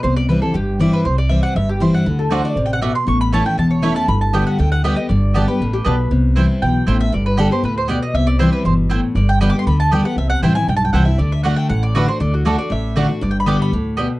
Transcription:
<<
  \new Staff \with { instrumentName = "Mandolin" } { \time 4/4 \key g \major \tempo 4 = 237 c''8 d''8 b'8 a'8 g'4 d''8 b'8 | c''8 d''8 e''8 fis''8 e''8 g'8 c''8 fis''8~ | fis''8 r4. \tuplet 3/2 { r8 g''8 fis''8 } e''8 c'''8 | cis'''8 b''8 a''8 g''8 a''8 cis''8 e''8 a''8 |
b''8 a''8 g''8 fis''8 g''8 fis''8 e''8 ees''8 | d''4. b'4. r4 | r2 g''4. e''8 | d''8 b'8 a'8 c''8 b'8 c''8 d''8 ees''8 |
e''8 d''8 c''8 b'8 c''8 r4. | d''8 g''8 \tuplet 3/2 { b''8 d'''8 c'''8 } b''8 a''8 g''8 fis''8 | e''8 fis''8 g''8 aes''8 \tuplet 3/2 { g''8 a''8 g''8 } fis''8 e''8 | d''8 e''8 fis''8 g''8 fis''8 d''8 b'8 c''8 |
d''8 fis'8 a'8 d''8 e''4 r4 | \tuplet 3/2 { d''8 g''8 b''8 } d'''8 b''4. r4 | }
  \new Staff \with { instrumentName = "Resonator guitar played with a steel bar" } { \time 4/4 \key g \major r1 | r1 | r8 a'8 c''8 d''8 r2 | r1 |
r1 | r2 r8 g'8 b'4 | r1 | r1 |
r1 | r1 | r1 | r1 |
r1 | r1 | }
  \new Staff \with { instrumentName = "Mandolin" } { \time 4/4 \key g \major r1 | r1 | r4 <a fis' d'' fis''>8 r4. <a fis' d'' fis''>8 r8 | r4 <a e' cis'' a''>8 r4. <a e' cis'' a''>8 r8 |
r4 <b g' d'' g''>8 r4. <b g' d'' g''>8 r8 | r4 <b g' d'' a''>8 r4. <b g' d'' a''>8 r8 | r4 <c' e' c'' g''>8 r4. <c' e' c'' g''>8 r8 | r4 <b g' d'' g''>8 r4. <b g' d'' g''>8 r8 |
r4 <c' e' c'' g''>8 r4. <c' e' c'' g''>8 r8 | r4 <b g' d'' g''>8 r4. <b g' d'' g''>8 r8 | r4 <c' e' c'' g''>8 r4. <c' e' c'' g''>8 r8 | r4 <a fis' d'' fis''>8 r4. <a fis' d'' fis''>8 r8 |
r4 <a fis' d'' fis''>8 r4. <a fis' d'' fis''>8 r8 | r4 <b g' d'' g''>8 r4. <b g' d'' g''>8 r8 | }
  \new Staff \with { instrumentName = "Steel-string acoustic guitar" } { \time 4/4 \key g \major << { r4 <e g c' e'>8 <c' e'>8 r4 <e g c' e'>4 | r4 <e g c' e'>4 r4 <e g c' e'>4 | r4 <d a d' fis'>4 r2 | r4 <e a cis' e'>8 <cis' e'>8 r4 <e a cis' e'>4 |
r4 <d g b g'>4 r4 <d g b g'>8 <b g'>8 | r4 <d g b g'>8 <b g'>8 r2 | r4 <e g c' e'>4 r2 | r4 <d g b g'>8 <b g'>8 r2 |
r4 <e g c' e'>4 r2 | r4 <d g b g'>8 <b g'>8 r4 <d g b g'>8 <b g'>8 | r4 <e g c' e'>8 <c' e'>8 r4 <e g c' e'>8 <c' e'>8 | r4 <d a d' fis'>4 r4 <d a d' fis'>8 <d' fis'>8 |
r4 <d a d' fis'>8 <d' fis'>8 r4 <d a d' fis'>8 <d' fis'>8 | r4 <d g b g'>4 r2 | } \\ { c2 g,2 | c2 g,2 | d2 c4 b,4 | a,2 e,2 |
g,2 d2 | g,2 a,4 b,4 | c2 b,4 a,4 | g,2 a,4 b,4 |
c2 b,4 a,4 | g,2 d2 | c2 g,2 | d2 a,2 |
d2 a,2 | g,2 a,4 b,4 | } >> }
  \new Staff \with { instrumentName = "Upright bass" } { \clef bass \time 4/4 \key g \major c,2 g,,2 | c,2 g,,2 | d,2 a,,2 | a,,2 e,,2 |
g,,2 d,2 | g,,2 a,,4 b,,4 | c,2 b,,4 a,,4 | g,,2 d,2 |
c,2 g,,2 | g,,2 d,2 | c,4 a,,4 b,,4 c,4 | d,2 a,,2 |
d,2 a,,2 | g,,2 d,2 | }
>>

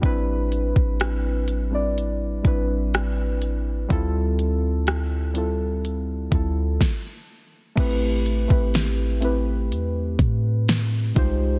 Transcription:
<<
  \new Staff \with { instrumentName = "Synth keys" } { \time 4/4 \key d \dorian \tempo 4 = 62 <g c' d' e' b'>4. r16 <g c' d' e' d''>8. <g c' d' e' b'>4~ <g c' d' e' b'>16 r16 | <g c' e' f' a'>4~ <g c' e' f' a'>16 r16 <g c' e' f' a'>4 <g c' e' f' a'>8 r4 | \key a \minor <a c' e' g' b'>8. <a c' e' g' b'>8. <a c' e' g' b'>4.~ <a c' e' g' b'>16 r16 <g aes ees' f' g' c''>8 | }
  \new Staff \with { instrumentName = "808-style bass" } { \clef bass \time 4/4 \key d \dorian a,,8. a,,4.~ a,,16 a,,4. | d,2~ d,8 d,8 r4 | \key a \minor a,,8. a,,4~ a,,16 e,8 a,4 c,8 | }
  \new DrumStaff \with { instrumentName = "Drums" } \drummode { \time 4/4 <hh bd>8 hh16 bd16 <hh ss>8 hh8 hh8 <hh bd>8 <hh ss>8 hh8 | <hh bd>8 hh8 <hh ss>8 hh8 hh8 <hh bd>8 <bd sn>4 | <cymc hh bd>8 hh16 bd16 <hh sn>8 hh8 hh8 <hh bd>8 <hh sn>8 <hh bd>8 | }
>>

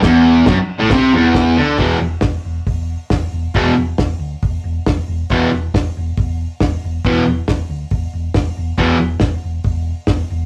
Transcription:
<<
  \new Staff \with { instrumentName = "Distorted electric guitar" } { \clef bass \time 4/4 \key c \lydian \tempo 4 = 137 e,4 fis,16 r8 a,16 c8 e,4 d8 | <e, b, e>8 r2. r8 | <e, b, e>8 r2. r8 | <e, b, e>8 r2. r8 |
<e, b, e>8 r2. r8 | <e, b, e>8 r2. r8 | }
  \new Staff \with { instrumentName = "Fingered electric bass" } { \clef bass \time 4/4 \key c \lydian e,,4 fis,,16 r8 a,,16 c,8 e,,4 d,8 | e,,8 e,,8 e,,8 e,,8 e,,4 e,,8 e,,8 | e,,8 e,,8 e,,8 d,8 e,,8 e,,8 e,,8 e,,8 | e,,8 e,,8 e,,8 e,,8 e,,4 e,,8 e,,8 |
e,,8 e,,8 e,,8 d,8 e,,8 e,,8 e,,8 e,,8 | e,,8 e,,8 e,,8 e,,8 e,,4 e,,8 e,,8 | }
  \new DrumStaff \with { instrumentName = "Drums" } \drummode { \time 4/4 <cymc bd sn>4 <cymc bd sn>4 <cymc bd sn>4 <cymc bd sn>4 | <hho bd>4 <hho bd sn>4 <hho bd>4 <hho bd sn>4 | <hho bd>4 <hho bd sn>4 <hho bd>4 <hho bd sn>4 | <hho bd>4 <hho bd sn>4 <hho bd>4 <hho bd sn>4 |
<hho bd>4 <hho bd sn>4 <hho bd>4 <hho bd sn>4 | <hho bd>4 <hho bd sn>4 <hho bd>4 <hho bd sn>4 | }
>>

